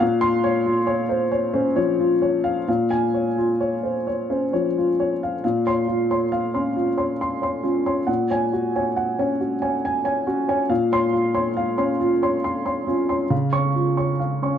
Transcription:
upright piano
0.00 A#2 F5
0.21 C6
0.44 C#5
0.66 F4
0.87 C#5
1.09 C5
1.32 C#5
1.53 C#4 C5
1.76 F3 C#5
1.99 F4
2.22 C#5
2.44 F5
2.68 A#2 F5
2.91 G#5
3.14 C#5
3.38 F4
3.60 C#5
3.83 C5
4.07 C#5
4.30 C#4 C5
4.53 F3 C#5
4.78 F4
5.00 C#5
5.23 F5
5.44 A#2 F5
5.67 C#5 C6
5.88 F4
6.11 C#5 C6
6.32 F5
6.54 C#4 C#5 C6
6.76 F4
6.97 C#5 C6
7.21 C6
7.42 C#5 C6
7.63 C#4 F4
7.86 C#5 C6
8.07 A#2 F#5
8.30 C#5 G#5
8.53 F#4
8.76 C#5 G#5
8.96 F#5
9.19 C#4 C#5 G#5
9.40 F#4
9.62 C#5 G#5
9.85 G#5
10.04 C#5 G#5
10.27 C#4 F#4
10.48 C#5 G#5
10.70 A#2 F5
10.92 C#5 C6
11.13 F4
11.35 C#5 C6
11.57 F5
11.78 C#4 C#5 C6
12.00 F4
12.22 C#5 C6
12.44 C6
12.66 C#5 C6
12.87 C#4 F4
13.09 C#5 C6
13.30 C#3 F5
13.53 C#5 C#6
13.75 F4
13.97 C#5 C#6
14.19 F5
14.42 C#4 C#5 C#6

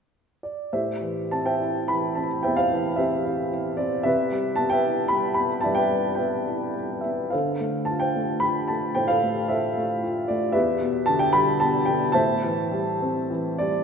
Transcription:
upright piano
0.43 D5
0.73 A2 G4 C5 E5
1.01 E3
1.31 C4 A5
1.46 C5 E5 G5
1.60 E4
1.88 E3 B5
2.15 C4 A5
2.43 E2 C5 E5 G5
2.57 C5 F5
2.72 E3
2.96 C4 G4 C5 E5
3.25 E4
3.52 E3
3.77 C4 D5
4.03 C3 G4 B4 E5
4.32 G3
4.56 B3 A5
4.70 B4 E5 G5
4.86 E4
5.08 B5
5.12 G3
5.34 B5
5.39 B3
5.61 D5 E5 A5
5.66 G2
5.75 B4 E5 G5
5.93 G3
6.15 B4 E5 G5
6.20 B3
6.48 E4
6.77 G3
7.01 E5
7.05 B3
7.30 D3 A4 C5 F5
7.60 A3
7.85 A5
7.90 F4
8.00 C5 G5
8.16 A3
8.40 F4 B5
8.68 A3 A5
8.95 A2 C5 G5
9.08 A4 C5 F5
9.23 A3
9.48 F4 A4 C5 E5
9.77 A3
10.04 F4
10.28 A3 D5
10.52 E2 G4 B4 E5
10.81 B2
11.06 D3 A5
11.19 G5
11.33 G3 B5
11.60 B2 A5
11.85 D3 G5
12.12 A2 C5 E5 A5
12.44 E3
12.72 G3
13.02 C4
13.30 E3
13.58 G3 D5

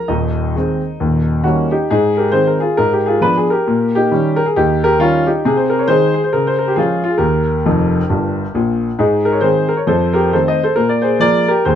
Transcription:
grand piano
0.08 D#1 D#2 D#4 D#5
0.56 D#3 G#3 C4
1.00 D#1 D#2
1.44 D#3 G3 A#3 C#4 F#4
1.71 D#4 G4
1.91 G#2 D#4 G#4
2.17 G4 A#4
2.32 D#3 G#3 C4 C5
2.47 A#4
2.60 F4 G#4
2.77 G#2 A#4
2.93 G4
3.06 F4 G#4
3.21 F3 B3 D4 B4
3.37 G#4
3.50 G4 A#4
3.67 A#2
3.95 D#4 G4
4.11 D#3 G3 C#4
4.36 A#4
4.46 G#4
4.56 D#2 D#4 G4
4.84 G4 A#4
4.99 D#3 G3 C#4 F4
5.26 D#4 G4
5.45 C3 G#4
5.57 C5
5.70 A#4
5.79 C#5
5.88 D#3 G#3 D#4 G#4 C5
6.14 G#4
6.24 C5
6.33 C#3 A#4
6.47 C5
6.59 A#4
6.68 G4
6.76 F3 G#3 C#4 F4 G#4
7.04 F4
7.10 G#4
7.18 D#2 G4 A#4
7.66 F1 F2
8.10 G1 G2
8.55 A#1 A#2
8.99 G#2 D#4 G#4
9.25 A#4
9.32 C#5
9.41 D#3 G#3 C4 G#4 C5
9.69 A#4
9.77 C#5
9.87 F2 A4 C5
10.13 G4 A#4
10.33 D#3 A3 C4 A4 C5
10.48 C5 D#5
10.63 A4 C5
10.76 A#2 A#4
10.89 D5
11.02 G#4 C5
11.20 F3 G#3 A#3 A#4 D5
11.48 G4 A#4
11.65 D#2 G#4 C5

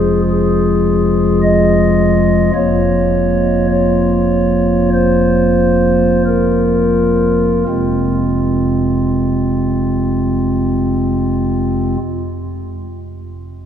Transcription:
pipe organ
Already playing: F1 F2 F3 G#3 F4 G#4
0.30 G#4
1.43 D#5
2.55 F1 F2 F3 A#3 F4 C#5
3.70 C#5
4.94 C5
6.26 A#4
7.68 F1 F2 C3 G#3 C4 F4

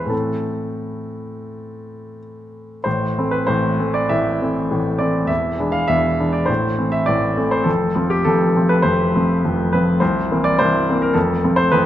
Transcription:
grand piano
Already playing: E2 E3 G#3 B3 B4 C5 E5 F5
0.06 A2 E3 A3 A4
0.10 C4
2.84 A1 A2 C5
3.17 E3 A3 C4
3.31 B4
3.47 A1 A2 C5
3.78 E3 A3 C4
3.94 D5
4.09 A1 A2 E5
4.41 E3 A3 C4
4.71 A1 A2
4.99 E3 A3 C4 D5
5.25 E1 E5
5.29 E2
5.58 E3 G#3 D4
5.72 F5
5.88 E1 E2 E5
6.19 E3 G#3 D4
6.33 D5
6.46 A1 A2 C5
6.77 E3 A3 C4
6.92 E5
7.06 A1 A2 D5
7.37 E3 A3 C4
7.51 C5
7.64 F1 F2 A4
7.95 F3 A3 C4
8.10 G4
8.25 F1 F2 A4
8.56 F3 A3 C4
8.69 B4
8.82 F1 F2 C5
9.15 F3 A3 C4
9.45 F1 F2
9.73 F3 A3 C4 B4
10.00 C1 C2 C5
10.31 E3 A#3 C4
10.44 D5
10.59 C1 C2 C5
10.89 E3 A#3 C4
11.02 A#4
11.13 F1 F2 A4
11.44 F3 A3 C4
11.56 C5
11.71 F1 F2 B4

